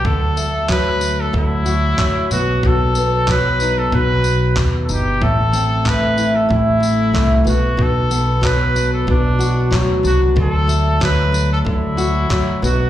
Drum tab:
TB |-x-x-x-x|-x-x-x-x|-x-x-x-x|-x-x-x-x|
CP |--x---x-|--x---x-|--x---x-|--x---x-|
BD |o-o-o-o-|o-o-o-o-|o-o-o-o-|o-o-o-o-|

TB |-x-x-x-x|
CP |--x---x-|
BD |o-o-o-o-|